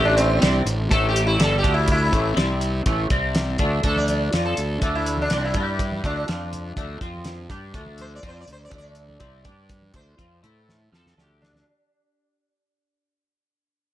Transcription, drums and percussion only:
0.18 closed hi-hat
0.42 snare, closed hi-hat
0.67 closed hi-hat
0.91 kick, closed hi-hat
1.16 closed hi-hat
1.40 snare, closed hi-hat
1.64 kick, closed hi-hat
1.88 kick, closed hi-hat
2.13 kick, closed hi-hat
2.37 snare, closed hi-hat
2.61 closed hi-hat
2.86 kick, closed hi-hat
3.10 kick, closed hi-hat
3.35 snare, closed hi-hat
3.58 kick, closed hi-hat
3.83 kick, closed hi-hat
3.96 high conga
4.08 closed hi-hat, high conga
4.33 snare, closed hi-hat
4.57 closed hi-hat
4.81 kick, closed hi-hat, high conga, low conga
5.06 closed hi-hat
5.18 high conga
5.30 snare, closed hi-hat
5.54 kick, closed hi-hat, low conga
5.79 kick, closed hi-hat
5.92 high conga
6.04 kick, closed hi-hat, high conga
6.28 snare, closed hi-hat
6.53 closed hi-hat, low conga
6.76 kick, closed hi-hat, high conga, low conga
7.01 kick, closed hi-hat
7.14 high conga
7.24 snare, closed hi-hat
7.49 kick, closed hi-hat, low conga
7.74 kick, closed hi-hat
7.86 high conga
7.98 closed hi-hat, high conga
8.23 kick, closed hi-hat
8.47 closed hi-hat, low conga
8.71 kick, closed hi-hat, high conga, low conga
8.95 closed hi-hat
9.09 high conga
9.20 kick, closed hi-hat
9.45 kick, closed hi-hat, low conga
9.69 kick, closed hi-hat
9.82 high conga
9.94 kick, closed hi-hat, high conga, low conga
10.19 kick, closed hi-hat
10.44 closed hi-hat, low conga
10.68 snare, low conga
10.93 snare
11.05 snare, high conga
11.17 snare, high conga
11.28 high conga
11.42 snare, low conga
11.54 snare, low conga

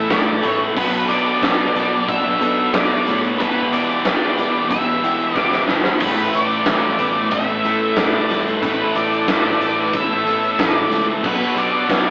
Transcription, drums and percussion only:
0.10 kick, snare, closed hi-hat
0.43 closed hi-hat
0.76 kick, crash
0.94 closed hi-hat
1.09 closed hi-hat
1.43 kick, snare, closed hi-hat
1.76 closed hi-hat
2.09 kick, closed hi-hat
2.41 closed hi-hat
2.73 kick, snare, closed hi-hat
3.07 snare, closed hi-hat
3.24 closed hi-hat
3.40 kick, closed hi-hat
3.73 closed hi-hat
3.89 closed hi-hat
4.05 kick, snare, closed hi-hat
4.38 closed hi-hat
4.71 kick, closed hi-hat
5.04 closed hi-hat
5.20 closed hi-hat
5.35 kick, snare
5.52 snare
5.68 snare
5.84 snare
6.00 kick, crash
6.17 closed hi-hat
6.33 closed hi-hat
6.66 kick, snare, closed hi-hat
6.99 closed hi-hat
7.31 kick, closed hi-hat
7.65 closed hi-hat
7.96 kick, snare, closed hi-hat
8.30 snare, closed hi-hat
8.47 closed hi-hat
8.63 kick, closed hi-hat
8.95 closed hi-hat
9.12 closed hi-hat
9.28 kick, snare, closed hi-hat
9.61 closed hi-hat
9.93 kick, closed hi-hat
10.27 closed hi-hat
10.43 closed hi-hat
10.59 kick, snare, closed hi-hat
10.92 closed hi-hat
11.24 kick, crash
11.41 closed hi-hat
11.57 closed hi-hat
11.90 kick, snare, closed hi-hat

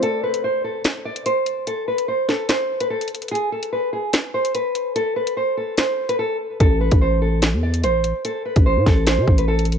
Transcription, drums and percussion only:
0.03 closed hi-hat
0.34 closed hi-hat
0.84 finger snap, snare, closed hi-hat
1.16 closed hi-hat
1.26 closed hi-hat
1.46 closed hi-hat
1.67 closed hi-hat
1.98 closed hi-hat
2.29 snare
2.49 finger snap, snare, closed hi-hat
2.80 closed hi-hat
3.01 closed hi-hat
3.08 closed hi-hat
3.15 closed hi-hat
3.22 closed hi-hat
3.28 closed hi-hat
3.35 closed hi-hat
3.63 closed hi-hat
4.13 finger snap, snare, closed hi-hat
4.45 closed hi-hat
4.55 closed hi-hat
4.75 closed hi-hat
4.96 closed hi-hat
5.27 closed hi-hat
5.78 finger snap, snare, closed hi-hat
6.09 closed hi-hat
6.60 kick, closed hi-hat
6.92 kick, closed hi-hat
7.42 finger snap, snare, closed hi-hat
7.74 closed hi-hat
7.83 closed hi-hat
8.04 closed hi-hat
8.25 closed hi-hat
8.56 kick, closed hi-hat
8.86 kick, snare
9.06 finger snap, snare, closed hi-hat
9.27 kick
9.38 closed hi-hat
9.59 closed hi-hat
9.65 closed hi-hat
9.72 closed hi-hat

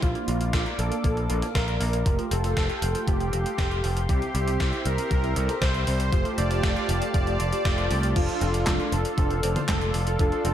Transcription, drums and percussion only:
0.02 kick, closed hi-hat
0.15 closed hi-hat
0.28 closed hi-hat
0.41 closed hi-hat
0.53 kick, snare, closed hi-hat
0.66 closed hi-hat
0.79 closed hi-hat
0.92 closed hi-hat
1.04 kick, closed hi-hat
1.17 closed hi-hat
1.30 closed hi-hat
1.42 closed hi-hat, mid tom
1.55 kick, snare, closed hi-hat
1.68 closed hi-hat
1.81 open hi-hat
1.93 closed hi-hat
2.06 kick, closed hi-hat
2.19 closed hi-hat
2.31 closed hi-hat
2.44 closed hi-hat, mid tom
2.57 kick, snare, closed hi-hat
2.70 closed hi-hat
2.82 closed hi-hat
2.95 closed hi-hat
3.08 kick, closed hi-hat
3.20 closed hi-hat
3.33 closed hi-hat
3.46 closed hi-hat
3.58 kick, snare, closed hi-hat
3.71 closed hi-hat
3.84 open hi-hat
3.97 closed hi-hat
4.09 kick, closed hi-hat
4.22 closed hi-hat
4.35 closed hi-hat
4.48 closed hi-hat
4.60 kick, snare, closed hi-hat
4.73 closed hi-hat
4.86 closed hi-hat
4.98 closed hi-hat
5.11 kick, closed hi-hat
5.24 closed hi-hat
5.36 closed hi-hat
5.49 closed hi-hat, mid tom
5.62 kick, snare, closed hi-hat
5.74 closed hi-hat
5.87 open hi-hat
6.00 closed hi-hat
6.13 kick, closed hi-hat
6.25 closed hi-hat
6.38 closed hi-hat
6.51 closed hi-hat, mid tom
6.63 kick, snare, closed hi-hat
6.76 closed hi-hat
6.89 closed hi-hat
7.02 closed hi-hat
7.14 kick, closed hi-hat
7.27 closed hi-hat
7.40 closed hi-hat
7.53 closed hi-hat
7.65 kick, snare, closed hi-hat
7.78 closed hi-hat
7.91 open hi-hat
8.03 closed hi-hat
8.16 kick, closed hi-hat, crash
8.29 closed hi-hat
8.41 closed hi-hat
8.54 closed hi-hat
8.67 kick, snare, clap, closed hi-hat
8.80 closed hi-hat
8.92 closed hi-hat
9.05 closed hi-hat
9.18 kick, closed hi-hat
9.30 closed hi-hat
9.43 closed hi-hat
9.56 closed hi-hat, mid tom
9.69 kick, snare, clap, closed hi-hat
9.81 closed hi-hat
9.94 open hi-hat
10.07 closed hi-hat
10.19 kick, closed hi-hat
10.32 closed hi-hat
10.45 closed hi-hat

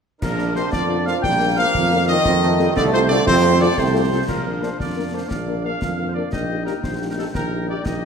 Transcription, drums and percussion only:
0.22 concert bass drum, snare, crash
0.39 snare
0.56 snare
0.73 concert bass drum, snare
1.07 snare
1.24 concert bass drum, snare
1.75 concert bass drum, snare
2.25 concert bass drum, snare, crash
2.42 snare
2.59 snare
2.77 concert bass drum, snare
3.11 snare
3.27 concert bass drum, snare
3.78 concert bass drum, snare
4.28 concert bass drum, snare, crash
4.63 snare
4.80 concert bass drum, snare
5.31 concert bass drum, snare
5.82 concert bass drum, snare
6.33 concert bass drum, snare
6.67 snare
6.84 concert bass drum, snare
7.35 concert bass drum, snare
7.86 concert bass drum, snare

